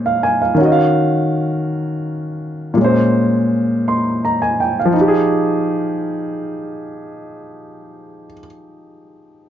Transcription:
grand piano
Already playing: A#2 G#3 C#4 C5
0.06 F5
0.23 G#5
0.42 F5
0.55 D#3 C#4
0.61 F#4 D#5
0.72 F5
2.74 A#2 G#3
2.81 C#4 C5
3.88 C6
4.25 A#5
4.42 G#5
4.60 G5
4.80 F5
4.85 F3
4.93 D#4
5.01 G4
5.08 G#4

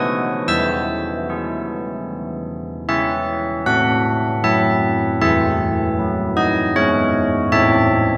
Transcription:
church bells
Already playing: B3 F#4 A4 D#5 D#6
0.48 E3 E5 E6
1.29 E4 G#4
2.88 C#4 G#4 E5
3.66 A3 F#5
4.44 F#3 E5
5.22 E3 G#4 E5
5.99 F#3
6.37 D#5
6.76 G#3 C#5
7.52 A3 A4 E5

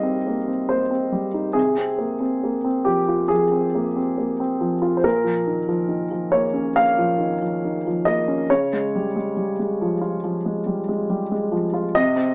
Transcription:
upright piano
Already playing: C3 G3 A#3 C4 D#4 D#5 F5
0.03 C4
0.27 A#3
0.48 C4
0.69 A#3 C5
0.91 C4
1.12 G3
1.34 D#4
1.53 C3 G#4
1.77 C4
1.98 A#3
2.20 C4
2.43 A#3
2.64 C4
2.85 F3 G4
3.08 F4
3.28 F3 G#4
3.52 C4
3.75 A#3
3.96 C4
4.18 A#3
4.40 C4
4.61 F3
4.82 F4
4.97 C5
5.04 A#2 A#4
5.24 F3
5.47 D#3
5.68 F3
5.88 D#3
6.11 F3
6.32 A#3 C#5
6.53 C#4
6.76 A#3 F5
6.98 F3
7.19 D#3
7.42 F3
7.64 D#3
7.87 F3
8.05 A#3 D#5
8.28 C#4
8.50 C#3 C#5
8.73 G#3
8.95 G3
9.16 G#3
9.37 G3
9.59 G#3
9.81 F3
10.01 F4
10.24 F3
10.46 G#3
10.66 G3
10.89 G#3
11.10 G3
11.31 G#3
11.52 F3
11.74 F4
11.95 C3 D#5
12.16 C4

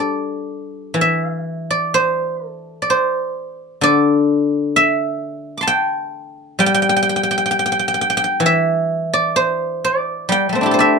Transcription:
guzheng
Already playing: G3 D4 G4 A4 G5
0.00 D5
0.94 E3
1.01 E5
1.70 D5
1.94 C5
2.50 A4
2.82 D5
2.90 C5
3.81 D3 D5
4.76 E5
5.58 C6 D6
5.62 A5
5.67 G5
6.59 G3 G5
6.66 G5
6.74 G5
6.82 G5
6.89 G5
6.96 G5
7.03 G5
7.09 G5
7.16 G5
7.23 G5
7.31 G5
7.38 G5
7.46 G5
7.51 G5
7.59 G5
7.66 G5
7.72 G5
7.79 G5
7.88 G5
7.94 G5
8.01 G5
8.10 G5
8.17 G5
8.24 G5
8.40 E3
8.46 E5
9.13 D5
9.36 C5
9.84 D5
10.29 G3 G5
10.49 G3 A3
10.55 C4
10.61 D4 E4
10.66 G4
10.71 A4 C5
10.79 D5 E5

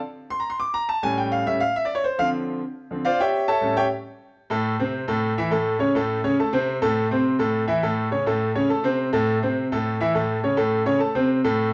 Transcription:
grand piano
0.30 C6
0.40 A#5
0.50 C6
0.60 D6
0.74 A#5
0.89 A5
1.03 A2 G3 C#4 G#5
1.18 G5
1.32 F5
1.46 A2 G3 C#4 E5
1.60 F5
1.76 E5
1.85 D5
1.95 C#5
2.04 C5
2.18 D3 F3 C4 F5
2.91 D3 F3 C4
3.05 F4 C5 D5 F5
3.20 G4 C#5 E5 G5
3.48 A4 C#5 E5 A5
3.61 A2 G3 C#4
3.77 G4 C#5 E5 G5
4.50 A2 A3 A4
4.79 C3 C4 C5
5.08 A2 A3 A4
5.38 E3 E4 E5
5.51 A2 A3 A4
5.79 C#3 C#4 C#5
5.95 A2 A3 A4
6.24 C#3 C#4 C#5
6.39 A3 A4 A5
6.53 C3 C4 C5
6.82 A2 A3 A4
7.11 C3 C4 C5
7.39 A2 A3 A4
7.68 E3 E4 E5
7.83 A2 A3 A4
8.11 C#3 C#4 C#5
8.26 A2 A3 A4
8.55 C#3 C#4 C#5
8.69 A3 A4 A5
8.83 C3 C4 C5
9.13 A2 A3 A4
9.42 C3 C4 C5
9.72 A2 A3 A4
10.00 E3 E4 E5
10.14 A2 A3 A4
10.43 C#3 C#4 C#5
10.57 A2 A3 A4
10.86 C#3 C#4 C#5
10.99 A3 A4 A5
11.15 C3 C4 C5
11.44 A2 A3 A4

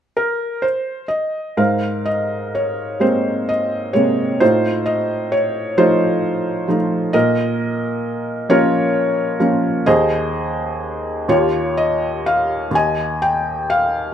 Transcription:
felt piano
0.17 A#4
0.62 C5
1.08 D#5
1.57 G#2 A#4 C5 F5
2.06 D#5
2.55 C#5
3.00 G#3 A#3 C4 C5
3.49 D#5
3.93 C3 G#3 A#3 C#5
4.40 A2 D#4 F4 C5
4.86 D#5
5.32 C#5
5.77 F3 A3 D#4 F4 C5
6.68 F3 A3 D#4
7.13 A#2 A#4 D#5
8.49 F3 A#3 C#4 F4 A#4 C#5
9.40 F3 A#3 C#4
9.86 D#2 G#4 C5 D#5
11.28 D#2 F4 G4 C#5
11.77 D#5
12.26 F5
12.71 D#2
12.75 D#5 G#5
13.22 G5
13.70 F5

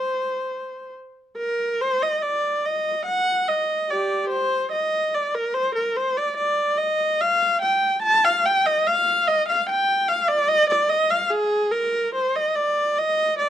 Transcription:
viola
Already playing: C5
1.38 A#4
1.81 C5
2.02 D#5
2.22 D5
2.65 D#5
3.06 F#5
3.48 D#5
3.90 G4 D5
4.30 C5
4.72 D#5
5.15 D5
5.35 A#4
5.54 C5
5.75 A#4
5.96 C5
6.17 D5
6.37 D5
6.78 D#5
7.20 F5
7.62 G5
8.03 A5
8.25 F5
8.45 G5
8.66 D#5
8.87 F5
9.27 D#5
9.49 F5
9.69 G5
10.09 F5
10.28 D5
10.48 D#5
10.70 D5
10.89 D#5
11.10 F5
11.30 G#4
11.72 A#4
12.15 C5
12.36 D#5
12.56 D5
12.98 D#5
13.39 D5

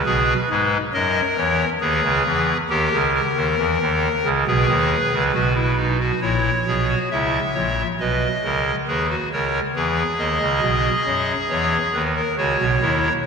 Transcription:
pipe organ
Already playing: B4
0.06 B1 B2 G#4
0.50 G#2 G#3 B4
0.93 F#2 F#3 A#4 D#5
1.37 E2 E3 C#5
1.81 D#2 D#3 G#4 B4
2.03 C#2 C#3
2.25 E2 E3
2.69 D#2 D#3 G4 A#4
2.93 C#2 C#3
3.14 A#4
3.36 D#2 D#3
3.58 E2 E3
3.81 D#2 D#3
4.24 C#2 C#3
4.47 B1 B2 G#4 B4
4.68 D#2 D#3
5.12 C#2 C#3
5.34 B1 B2 F#4
5.55 E4
5.77 D#4
6.00 F#4
6.22 A#1 A#2 E4 C#5
6.67 B1 B2 G#4
6.89 F#4
7.11 C#2 C#3 E4 E5
7.55 A#1 A#2 C#5
8.00 B1 B2 B4 D#5
8.44 C#2 C#3 A#4
8.87 D#2 D#3 G#4 B4
9.10 F#4
9.32 C#2 C#3 A#4 C#5
9.76 E2 E3 G#4 B4
10.19 D#2 D#3 D#5
10.41 C#2 C#3
10.61 B1 B2
11.07 F#2 F#3
11.50 E2 E3 C#5
11.94 D#2 D#3 B4
12.16 A#4
12.37 C#2 C#3 F#4 C#5
12.59 B1 B2
12.81 D#2 D#3 E4

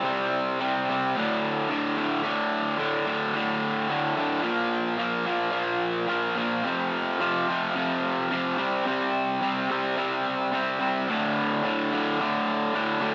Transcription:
overdriven electric guitar
0.03 C3 G3 C4
0.60 C3 G3 C4
0.89 C3 G3 C4
1.16 D2 A2 D3
1.68 D2 A2 D3
1.96 D2 A2 D3
2.22 D2 A2 D3
2.77 D2 A2 D3
3.06 D2 A2 D3
3.34 D2 A2 D3
3.89 D2 A2 D3
4.16 D2 A2 D3
4.43 A#2 F3 A#3
4.97 A#2 F3 A#3
5.25 A#2 F3 A#3
5.51 A#2 F3 A#3
6.08 A#2 F3 A#3
6.36 A#2 F3 A#3
6.64 F2 C3 F3
7.19 F2 C3 F3
7.48 F2 C3 F3
7.75 F2 C3 F3
8.31 F2 C3 F3
8.58 C3 G3 C4
8.86 C3 G3 C4
9.42 C3 G3 C4
9.70 C3 G3 C4
9.97 C3 G3 C4
10.52 C3 G3 C4
10.79 C3 G3 C4
11.08 D2 A2 D3
11.63 D2 A2 D3
11.92 D2 A2 D3
12.19 D2 A2 D3
12.74 D2 A2 D3
13.00 D2 A2 D3

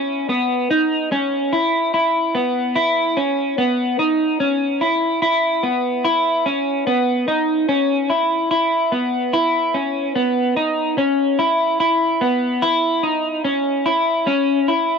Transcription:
clean electric guitar
Already playing: C#4
0.29 B3
0.71 D#4
1.12 C#4
1.53 E4
1.94 E4
2.35 B3
2.76 E4
3.17 C#4
3.58 B3
3.99 D#4
4.40 C#4
4.81 E4
5.22 E4
5.63 B3
6.05 E4
6.46 C#4
6.87 B3
7.28 D#4
7.69 C#4
8.10 E4
8.51 E4
8.92 B3
9.33 E4
9.74 C#4
10.15 B3
10.56 D#4
10.98 C#4
11.39 E4
11.80 E4
12.21 B3
12.62 E4
13.03 D#4
13.45 C#4
13.86 E4
14.27 C#4
14.68 E4

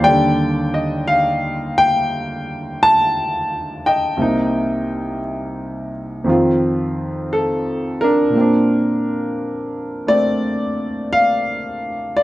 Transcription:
grand piano
Already playing: D#2
0.01 D#3 G3 D5 G5
0.08 D3
0.74 D#5
1.08 F5
1.78 G5
2.83 A5
3.86 D#5 G5
4.17 C2 C3 A#3
4.21 D#4
6.24 F2 D#3 C4
6.29 F4
7.33 A4
8.01 D4 A#4
8.30 A#2 A#3
8.37 C4 D4
10.07 A3 C4 D5
11.13 F5
12.17 D5

